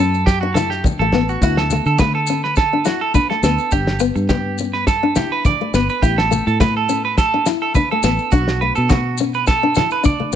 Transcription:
0.00 0.85 F#2 medium
0.00 0.23 C#4 medium
0.00 0.25 A4 medium
0.14 maracas soft
0.26 0.40 G4 medium
0.26 kick medium
0.26 snare medium
0.26 muted conga soft
0.26 maracas medium
0.41 0.54 D4 medium
0.41 0.54 F#4 medium
0.54 0.81 E4 medium
0.54 0.69 A4 medium
0.54 snare medium
0.54 high conga medium
0.54 maracas medium
0.70 0.83 G4 medium
0.70 snare soft
0.70 maracas soft
0.84 0.98 D4 medium
0.84 kick loud
0.84 high conga medium
0.84 low conga medium
0.84 maracas medium
0.99 1.36 A1 medium
0.99 1.12 A3 medium
0.99 1.27 A4 medium
1.12 1.38 B3 medium
1.12 snare medium
1.12 muted conga soft
1.12 low conga medium
1.29 1.42 F#4 medium
1.29 maracas soft
1.41 1.79 D2 loud
1.41 1.67 E4 medium
1.41 1.57 F#4 medium
1.41 kick medium
1.41 muted conga soft
1.41 maracas medium
1.57 1.85 A4 medium
1.57 snare medium
1.70 1.96 A3 medium
1.70 snare soft
1.70 high conga medium
1.70 maracas medium
1.86 2.85 D3 medium
1.86 1.99 A4 medium
1.86 maracas soft
1.98 2.25 A3 medium
1.98 2.14 B4 medium
1.98 kick medium
1.98 snare medium
1.98 high conga medium
1.98 maracas medium
2.15 2.42 A4 medium
2.27 2.54 C#4 medium
2.27 muted conga soft
2.27 maracas loud
2.44 2.57 B4 medium
2.44 snare soft
2.56 2.85 A4 medium
2.56 kick medium
2.56 snare medium
2.56 muted conga soft
2.56 maracas medium
2.73 2.84 D4 medium
2.85 3.10 E4 medium
2.85 3.00 F#4 medium
2.85 snare medium
2.85 muted conga soft
2.85 maracas medium
3.01 3.14 A4 medium
3.14 3.28 D4 medium
3.14 3.29 B4 medium
3.14 kick medium
3.14 high conga medium
3.14 maracas medium
3.30 3.42 A3 medium
3.30 3.43 A4 medium
3.30 snare soft
3.43 3.56 D2 loud
3.43 3.69 B3 medium
3.43 3.71 A4 medium
3.43 snare medium
3.43 maracas medium
3.58 maracas soft
3.71 4.10 G1 medium
3.71 3.97 D4 medium
3.71 4.00 G4 medium
3.71 kick medium
3.71 muted conga soft
3.71 maracas medium
3.87 snare medium
4.00 4.25 B3 medium
4.00 muted clean electric guitar stroke medium
4.00 maracas medium
4.15 5.15 G2 medium
4.15 muted clean electric guitar stroke medium
4.15 maracas soft
4.29 4.55 B3 medium
4.29 4.57 G4 medium
4.29 kick medium
4.29 snare medium
4.29 high conga loud
4.29 maracas medium
4.58 4.84 C#4 medium
4.58 muted conga soft
4.58 maracas loud
4.73 4.87 B4 medium
4.73 snare soft
4.87 5.15 A4 medium
4.87 kick medium
4.87 snare medium
4.87 muted conga soft
4.87 maracas medium
5.03 5.15 D4 medium
5.16 5.41 E4 medium
5.16 5.31 G4 medium
5.16 snare medium
5.16 high conga medium
5.16 low conga medium
5.16 maracas medium
5.32 5.45 B4 medium
5.45 5.58 D4 medium
5.45 5.73 D5 medium
5.45 kick medium
5.45 high conga medium
5.45 low conga medium
5.45 maracas medium
5.61 5.72 A3 medium
5.74 5.87 G1 medium
5.74 5.99 B3 medium
5.74 5.89 B4 medium
5.74 snare medium
5.74 maracas medium
5.89 6.03 B4 medium
5.89 maracas soft
6.02 6.40 A1 loud
6.02 6.27 E4 medium
6.02 6.17 G4 medium
6.02 kick medium
6.02 muted conga soft
6.02 maracas medium
6.18 6.45 A4 medium
6.18 snare medium
6.31 6.56 A3 medium
6.31 high conga medium
6.31 maracas loud
6.47 7.46 A2 medium
6.47 6.60 A4 medium
6.47 maracas soft
6.60 6.85 A3 medium
6.60 6.75 B4 medium
6.60 kick medium
6.60 snare medium
6.60 high conga medium
6.60 maracas medium
6.77 7.04 A4 medium
6.88 7.14 C#4 medium
6.88 muted conga soft
6.88 maracas medium
7.05 7.18 B4 medium
7.18 7.45 A4 medium
7.18 kick medium
7.18 snare medium
7.18 muted conga soft
7.18 maracas medium
7.34 7.45 D4 medium
7.46 7.71 E4 medium
7.46 muted clean electric guitar stroke medium
7.46 snare medium
7.46 maracas medium
7.62 7.75 A4 medium
7.74 7.89 D4 medium
7.74 7.90 B4 medium
7.74 kick medium
7.74 high conga medium
7.74 maracas medium
7.91 8.03 A3 medium
7.91 8.03 A4 medium
8.03 8.17 A1 loud
8.03 8.29 B3 medium
8.03 8.32 A4 medium
8.03 snare medium
8.03 maracas loud
8.19 maracas soft
8.32 8.70 B1 loud
8.32 8.58 D4 medium
8.32 8.60 F#4 medium
8.32 kick medium
8.32 muted conga soft
8.32 maracas medium
8.48 snare medium
8.61 8.87 A3 medium
8.61 8.75 B4 medium
8.75 9.76 B2 medium
8.75 8.89 A4 medium
8.75 maracas soft
8.89 9.16 A3 medium
8.89 9.17 F#4 medium
8.89 kick medium
8.89 snare medium
8.89 high conga medium
8.89 maracas medium
9.18 9.44 C#4 medium
9.18 muted conga soft
9.18 maracas loud
9.34 9.47 B4 medium
9.34 maracas soft
9.47 9.75 A4 medium
9.47 kick medium
9.47 snare medium
9.47 muted conga soft
9.47 maracas medium
9.63 9.75 D4 medium
9.75 10.01 E4 medium
9.75 9.91 A4 medium
9.75 snare medium
9.75 muted conga soft
9.75 high conga medium
9.75 low conga medium
9.75 maracas medium
9.91 10.05 B4 medium
9.91 maracas soft
10.03 10.17 D4 medium
10.03 10.33 D5 medium
10.03 kick medium
10.03 high conga medium
10.03 low conga medium
10.03 maracas medium
10.20 10.32 A3 medium
10.20 high conga medium

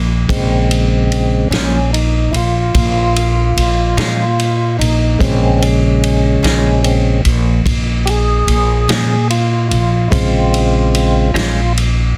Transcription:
0.00 0.25 A#1 medium
0.28 1.48 A#1 medium
0.28 1.48 C#3 medium
0.28 1.48 G#3 soft
0.28 1.48 C4 medium
0.28 kick medium
0.28 ride medium
0.71 ride medium
1.12 ride medium
1.50 2.29 A#1 medium
1.50 1.78 F3 medium
1.50 1.77 G#3 medium
1.50 1.91 C#4 medium
1.50 1.77 C#4 medium
1.50 snare medium
1.50 ride medium
1.55 1.78 A#2 medium
1.93 2.33 D#4 medium
1.93 ride medium
2.31 2.71 A#1 medium
2.31 2.36 E4 medium
2.31 ride medium
2.36 4.77 F4 medium
2.74 3.53 A#1 medium
2.74 kick medium
2.74 ride medium
3.16 ride medium
3.57 3.95 A#1 medium
3.57 ride medium
3.97 4.76 A#2 loud
3.97 4.24 A#2 medium
3.97 4.23 F3 medium
3.97 4.23 G#3 medium
3.97 4.22 C#4 medium
3.97 snare loud
3.97 ride medium
4.39 ride medium
4.79 5.17 A#1 medium
4.79 5.19 D#4 medium
4.79 ride medium
5.19 6.40 A#1 loud
5.19 6.81 C#3 soft
5.19 6.82 G#3 soft
5.19 5.58 C4 medium
5.19 5.60 C#4 medium
5.19 kick loud
5.19 ride medium
5.59 5.63 C4 medium
5.59 7.22 C#4 medium
5.59 ride medium
6.03 ride medium
6.43 7.21 A#1 loud
6.43 6.70 A#2 medium
6.43 6.69 F3 medium
6.43 6.69 G#3 medium
6.43 6.68 C#4 medium
6.43 snare loud
6.43 ride medium
6.83 7.21 C#3 soft
6.83 7.21 G#3 soft
6.83 7.22 C4 medium
6.83 ride medium
7.25 7.63 A#1 medium
7.25 ride medium
7.65 8.44 A#1 medium
7.65 kick medium
7.65 ride medium
8.05 8.10 G4 medium
8.05 9.28 G#4 medium
8.05 ride medium
8.47 8.86 A#1 medium
8.47 ride medium
8.88 9.67 A#2 medium
8.88 9.15 A#2 soft
8.88 9.15 F3 medium
8.88 9.14 G#3 medium
8.88 9.14 C#4 medium
8.88 snare loud
8.88 ride medium
9.30 9.68 F4 medium
9.30 ride medium
9.69 10.09 A#1 medium
9.69 10.10 F4 medium
9.69 ride medium
10.08 11.31 A#1 medium
10.08 11.31 C#3 soft
10.08 11.31 G#3 soft
10.08 11.31 C4 medium
10.08 10.13 E4 medium
10.12 11.73 F4 medium
10.12 kick loud
10.12 ride medium
10.54 ride medium
10.95 ride medium
11.34 12.13 A#1 medium
11.34 11.61 A#2 medium
11.34 11.60 F3 medium
11.34 11.60 G#3 medium
11.34 11.60 C#4 medium
11.34 snare loud
11.34 ride medium
11.77 ride medium

